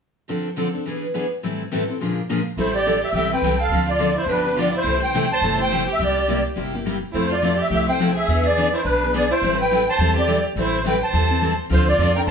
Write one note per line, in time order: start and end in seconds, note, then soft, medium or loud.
0.29 0.48 D3 soft
0.29 0.48 F3 soft
0.29 0.48 C4 soft
0.29 0.48 D4 medium
0.29 0.48 A4 medium
0.57 0.67 D3 medium
0.57 0.68 F3 medium
0.57 0.68 C4 medium
0.57 0.68 D4 medium
0.57 0.68 A4 medium
0.74 0.85 C4 soft
0.74 0.85 D4 soft
0.74 0.85 A4 soft
0.86 1.05 E3 medium
0.86 1.05 B3 medium
0.86 1.05 D4 medium
0.86 1.05 G#4 medium
0.86 1.05 B4 medium
1.14 1.25 E3 medium
1.14 1.25 B3 medium
1.14 1.25 D4 medium
1.14 1.25 G#4 medium
1.14 1.25 B4 medium
1.43 1.62 A2 soft
1.43 1.62 E3 soft
1.43 1.62 G3 medium
1.43 1.62 C4 medium
1.43 1.62 E4 medium
1.43 1.62 A4 medium
1.72 1.82 A2 medium
1.72 1.82 E3 medium
1.72 1.82 G3 medium
1.72 1.82 C4 medium
1.72 1.82 E4 medium
1.72 1.82 A4 medium
1.88 2.00 G3 soft
1.88 2.00 C4 soft
1.88 2.00 E4 soft
1.88 1.99 A4 soft
2.01 2.19 A#2 soft
2.01 2.20 D3 medium
2.01 2.19 F3 medium
2.01 2.20 G#3 medium
2.01 2.20 A#3 medium
2.01 2.20 D4 medium
2.01 2.20 F4 soft
2.01 2.20 G#4 medium
2.01 2.21 A#4 soft
2.29 2.39 A#2 medium
2.29 2.40 D3 medium
2.29 2.40 F3 medium
2.29 2.40 G#3 medium
2.29 2.40 A#3 medium
2.29 2.40 D4 medium
2.29 2.40 F4 medium
2.29 2.40 G#4 medium
2.29 2.40 A#4 medium
2.57 3.03 A1 medium
2.57 2.76 E3 soft
2.57 2.77 G3 medium
2.57 2.77 C4 medium
2.57 2.73 E4 medium
2.57 2.77 E4 medium
2.57 2.77 A4 medium
2.57 2.74 C5 medium
2.74 3.01 G4 medium
2.74 3.01 D5 medium
2.86 2.96 E3 medium
2.86 2.97 G3 medium
2.86 2.97 C4 medium
2.86 2.97 E4 medium
2.86 2.97 A4 medium
3.02 3.13 G4 medium
3.02 3.14 E5 medium
3.13 3.37 B1 medium
3.13 3.30 E3 medium
3.13 3.31 G3 medium
3.13 3.31 C4 medium
3.13 3.31 E4 medium
3.13 3.30 G4 medium
3.13 3.30 A4 medium
3.13 3.32 E5 medium
3.32 3.43 C4 soft
3.32 3.43 E4 soft
3.32 3.42 A4 soft
3.32 3.59 B4 medium
3.32 3.62 G5 medium
3.42 3.66 C2 medium
3.42 3.54 E3 medium
3.42 3.54 G3 medium
3.42 3.54 C4 medium
3.42 3.54 E4 medium
3.42 3.54 A4 medium
3.60 3.86 A4 medium
3.60 3.89 F5 medium
3.69 4.16 D2 medium
3.69 3.90 D3 medium
3.69 3.90 F3 medium
3.69 3.90 C4 medium
3.69 3.91 D4 medium
3.69 3.91 A4 medium
3.89 4.15 F4 medium
3.89 4.18 D5 medium
4.00 4.10 D3 medium
4.00 4.10 F3 medium
4.00 4.11 C4 medium
4.00 4.11 D4 medium
4.00 4.11 A4 medium
4.17 4.28 E4 medium
4.17 4.29 C5 medium
4.26 4.73 G1 medium
4.26 4.45 D3 medium
4.26 4.45 F3 medium
4.26 4.45 B3 medium
4.26 4.55 D4 medium
4.26 4.45 D4 medium
4.26 4.45 G4 medium
4.26 4.58 B4 medium
4.46 4.57 B3 soft
4.46 4.57 D4 soft
4.46 4.57 G4 soft
4.57 4.68 D3 medium
4.57 4.68 F3 medium
4.57 4.68 B3 medium
4.57 4.68 D4 medium
4.57 4.73 F4 medium
4.57 4.69 G4 medium
4.57 4.75 D5 medium
4.74 5.00 E4 medium
4.74 5.02 C5 medium
4.84 5.30 C2 medium
4.84 5.05 C3 medium
4.84 5.05 E3 medium
4.84 5.04 G3 medium
4.84 5.05 A3 medium
4.84 5.05 C4 soft
4.84 5.05 E4 medium
4.84 5.05 G4 medium
4.84 5.05 A4 medium
5.02 5.28 C5 medium
5.02 5.32 G5 medium
5.14 5.25 C3 medium
5.14 5.25 E3 medium
5.14 5.25 G3 medium
5.14 5.25 A3 medium
5.14 5.25 C4 medium
5.14 5.25 E4 medium
5.14 5.25 G4 medium
5.14 5.25 A4 medium
5.32 5.58 C5 medium
5.32 5.61 A5 medium
5.41 5.87 G1 medium
5.41 5.59 C3 medium
5.41 5.59 E3 soft
5.41 5.61 G3 medium
5.41 5.59 A3 medium
5.41 5.62 C4 medium
5.41 5.59 E4 medium
5.41 5.58 G4 medium
5.41 5.62 A4 medium
5.59 5.71 A3 soft
5.59 5.71 E4 soft
5.59 5.71 G4 soft
5.59 5.86 C5 medium
5.59 5.90 G5 medium
5.71 5.82 C3 medium
5.71 5.82 E3 medium
5.71 5.82 G3 medium
5.71 5.82 A3 medium
5.71 5.82 C4 medium
5.71 5.82 E4 medium
5.71 5.82 G4 medium
5.71 5.82 A4 medium
5.88 5.99 G4 medium
5.93 6.02 E5 medium
5.99 6.45 C2 medium
5.99 6.19 C3 medium
5.99 6.19 G3 medium
5.99 6.19 A#3 medium
5.99 6.19 E4 medium
5.99 6.42 G4 medium
5.99 6.19 G4 medium
6.04 6.44 D5 medium
6.29 6.39 C3 medium
6.29 6.39 G3 medium
6.29 6.39 A#3 medium
6.29 6.39 E4 medium
6.29 6.39 G4 medium
6.56 7.02 G1 medium
6.56 6.73 C3 medium
6.56 6.73 G3 medium
6.56 6.73 A#3 medium
6.56 6.73 E4 medium
6.56 6.73 G4 medium
6.74 6.85 A#3 soft
6.74 6.85 E4 soft
6.74 6.85 G4 medium
6.86 6.96 C3 medium
6.86 6.96 G3 medium
6.86 6.96 A#3 medium
6.86 6.96 E4 medium
6.86 6.96 G4 medium
7.12 7.60 F2 medium
7.12 7.33 F3 medium
7.12 7.33 A3 medium
7.12 7.33 C4 medium
7.12 7.29 E4 medium
7.12 7.34 E4 medium
7.12 7.34 A4 medium
7.12 7.32 C5 medium
7.30 7.56 F4 medium
7.30 7.60 D5 medium
7.42 7.53 F3 medium
7.42 7.53 A3 medium
7.42 7.53 C4 medium
7.42 7.53 E4 medium
7.42 7.53 A4 medium
7.57 7.69 G4 medium
7.61 7.71 E5 medium
7.70 8.16 C2 medium
7.70 7.87 F3 medium
7.70 7.87 A3 medium
7.70 7.87 C4 medium
7.70 7.87 E4 medium
7.70 7.86 G4 medium
7.70 7.87 A4 medium
7.70 7.89 E5 medium
7.88 7.99 C4 soft
7.88 7.99 E4 soft
7.88 7.99 A4 soft
7.88 8.14 C5 medium
7.88 8.15 G5 medium
8.00 8.10 F3 medium
8.00 8.10 A3 medium
8.00 8.10 C4 medium
8.00 8.10 E4 medium
8.00 8.11 A4 medium
8.15 8.42 G#4 medium
8.15 8.46 E5 medium
8.28 8.73 E2 medium
8.28 8.47 E3 medium
8.28 8.47 B3 medium
8.28 8.47 D4 medium
8.28 8.48 G#4 medium
8.28 8.48 B4 medium
8.44 8.71 G#4 medium
8.44 8.75 D5 medium
8.57 8.67 E3 medium
8.57 8.67 B3 medium
8.57 8.67 D4 medium
8.57 8.68 G#4 medium
8.57 8.68 B4 medium
8.74 8.85 E4 medium
8.74 8.84 C5 medium
8.84 9.30 B1 medium
8.84 9.02 E3 medium
8.84 9.02 B3 medium
8.84 9.12 D4 medium
8.84 9.02 D4 medium
8.84 9.02 G#4 medium
8.84 9.14 B4 medium
8.84 9.05 B4 medium
9.03 9.13 B3 soft
9.03 9.13 D4 soft
9.03 9.14 G#4 soft
9.14 9.24 E3 medium
9.14 9.25 B3 medium
9.14 9.25 D4 medium
9.14 9.25 G#4 medium
9.14 9.30 G#4 medium
9.14 9.24 B4 medium
9.14 9.31 D5 medium
9.31 9.57 E4 medium
9.31 9.58 C5 medium
9.42 9.87 A1 medium
9.42 9.62 E3 medium
9.42 9.62 G3 medium
9.42 9.62 C4 medium
9.42 9.62 E4 medium
9.42 9.62 A4 medium
9.58 9.85 B4 medium
9.58 9.89 G5 medium
9.71 9.81 E3 medium
9.71 9.81 G3 medium
9.71 9.82 C4 medium
9.71 9.82 E4 medium
9.71 9.82 A4 medium
9.89 10.15 C5 medium
9.89 10.18 A5 medium
9.98 10.44 E2 medium
9.98 10.15 E3 medium
9.98 10.15 G3 medium
9.98 10.16 C4 medium
9.98 10.15 E4 medium
9.98 10.15 A4 medium
10.16 10.27 C4 soft
10.16 10.27 E4 soft
10.16 10.43 G4 medium
10.16 10.27 A4 soft
10.16 10.44 D5 medium
10.27 10.38 E3 medium
10.27 10.38 G3 medium
10.27 10.38 C4 medium
10.27 10.39 E4 medium
10.27 10.39 A4 medium
10.55 11.01 A1 medium
10.55 10.75 E3 medium
10.55 10.75 G3 medium
10.55 10.76 C4 medium
10.55 10.76 E4 medium
10.55 10.84 E4 medium
10.55 10.76 A4 medium
10.55 10.84 C5 medium
10.84 10.95 E3 medium
10.84 10.95 G3 medium
10.84 10.95 C4 medium
10.84 10.95 E4 medium
10.84 10.96 A4 medium
10.84 11.01 B4 medium
10.84 11.03 G5 medium
11.03 11.56 C5 medium
11.03 11.56 A5 medium
11.13 11.59 E2 medium
11.13 11.29 E3 medium
11.13 11.29 G3 medium
11.13 11.29 C4 medium
11.13 11.29 E4 medium
11.13 11.28 A4 medium
11.29 11.41 C4 soft
11.29 11.41 E4 soft
11.29 11.41 A4 soft
11.41 11.52 E3 medium
11.41 11.52 G3 medium
11.41 11.53 C4 medium
11.41 11.53 E4 medium
11.41 11.53 A4 medium
11.69 11.98 D2 medium
11.69 11.89 D3 medium
11.69 11.89 F3 medium
11.69 11.89 C4 medium
11.69 11.89 D4 medium
11.69 11.87 F4 medium
11.69 11.89 A4 medium
11.69 11.87 C5 medium
11.88 12.14 F4 medium
11.88 12.14 D5 medium
11.98 12.26 F2 medium
11.98 12.09 D3 medium
11.98 12.09 F3 medium
11.98 12.10 C4 medium
11.98 12.10 D4 loud
11.98 12.10 A4 medium
12.16 12.27 C4 soft
12.16 12.27 D4 soft
12.16 12.27 A4 soft
12.16 12.21 A#4 medium
12.16 12.21 G5 medium
12.27 12.31 C2 medium
12.27 12.31 D3 medium
12.27 12.31 F3 medium
12.27 12.31 C5 medium
12.27 12.31 A5 loud